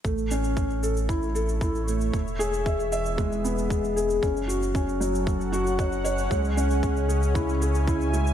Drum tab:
SH |xxxxxxxxxxxxxxxx|xxxxxxxxxxxxxxxx|xxxxxxxxxxxxxxxx|xxxxxxxxxxxxxxxx|
BD |o---o---o---o---|o---o---o---o---|o---o---o---o---|o---o---o---o---|